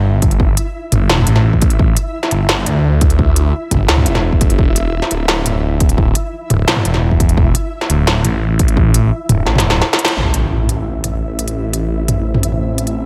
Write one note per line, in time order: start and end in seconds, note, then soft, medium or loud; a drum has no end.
0.00 0.56 G1 medium
0.00 10.15 E4 medium
0.00 10.15 E5 medium
0.22 kick loud
0.22 closed hi-hat medium
0.31 closed hi-hat soft
0.40 kick loud
0.57 closed hi-hat medium
0.92 1.08 G1 medium
0.92 closed hi-hat medium
0.92 mid tom medium
1.10 1.26 E1 medium
1.10 snare loud
1.18 mid tom medium
1.27 1.96 A1 loud
1.27 closed hi-hat medium
1.36 snare soft
1.36 mid tom soft
1.53 kick medium
1.62 kick loud
1.62 closed hi-hat medium
1.70 closed hi-hat soft
1.79 kick loud
1.97 closed hi-hat medium
2.23 snare soft
2.31 2.66 G1 medium
2.31 closed hi-hat medium
2.49 snare loud
2.66 3.53 D2 medium
2.66 closed hi-hat medium
2.66 mid tom soft
3.01 kick loud
3.01 closed hi-hat medium
3.10 closed hi-hat soft
3.19 kick loud
3.36 closed hi-hat medium
3.71 3.87 G1 medium
3.71 kick medium
3.71 closed hi-hat medium
3.71 mid tom medium
3.74 mid tom medium
3.77 mid tom soft
3.80 mid tom soft
3.83 mid tom soft
3.86 4.08 D2 medium
3.86 snare loud
3.86 mid tom soft
3.97 mid tom medium
4.06 4.52 E1 medium
4.06 closed hi-hat medium
4.15 snare soft
4.15 mid tom soft
4.33 kick medium
4.41 kick loud
4.41 closed hi-hat medium
4.50 4.58 G1 medium
4.50 closed hi-hat soft
4.59 5.01 E1 loud
4.59 kick loud
4.76 closed hi-hat medium
5.02 snare soft
5.11 6.15 D1 medium
5.11 closed hi-hat medium
5.28 snare loud
5.46 closed hi-hat medium
5.46 mid tom soft
5.80 kick loud
5.80 closed hi-hat medium
5.89 closed hi-hat soft
5.98 kick loud
6.15 closed hi-hat medium
6.50 6.66 D1 medium
6.50 closed hi-hat medium
6.50 mid tom medium
6.67 6.84 B1 medium
6.67 snare loud
6.76 mid tom medium
6.85 7.54 E1 loud
6.85 closed hi-hat medium
6.94 snare soft
6.94 mid tom soft
7.11 kick medium
7.20 kick loud
7.20 closed hi-hat medium
7.29 closed hi-hat soft
7.37 kick loud
7.55 closed hi-hat medium
7.81 snare soft
7.90 8.24 D1 medium
7.90 closed hi-hat medium
8.07 snare loud
8.24 9.11 A1 medium
8.24 closed hi-hat medium
8.24 mid tom soft
8.59 kick loud
8.59 closed hi-hat medium
8.68 closed hi-hat soft
8.77 kick loud
8.94 closed hi-hat medium
9.29 9.45 D1 medium
9.29 closed hi-hat medium
9.29 mid tom medium
9.46 9.64 A1 medium
9.46 snare medium
9.55 snare medium
9.55 mid tom medium
9.60 closed hi-hat medium
9.64 9.82 D1 medium
9.70 snare medium
9.70 mid tom soft
9.82 snare medium
9.93 snare loud
9.99 closed hi-hat medium
10.05 snare loud
10.05 closed hi-hat soft
10.16 13.06 A1 medium
10.16 13.06 A3 medium
10.16 13.06 C4 medium
10.16 13.06 E4 medium
10.16 12.93 E4 medium
10.16 13.06 C5 medium
10.16 13.06 E5 medium
10.16 impact medium
10.34 closed hi-hat medium
10.69 closed hi-hat medium
11.04 closed hi-hat medium
11.04 mid tom soft
11.39 closed hi-hat medium
11.48 closed hi-hat soft
11.73 closed hi-hat medium
12.08 closed hi-hat medium
12.08 mid tom medium
12.34 mid tom medium
12.43 closed hi-hat medium
12.52 mid tom soft
12.78 closed hi-hat medium
12.87 closed hi-hat soft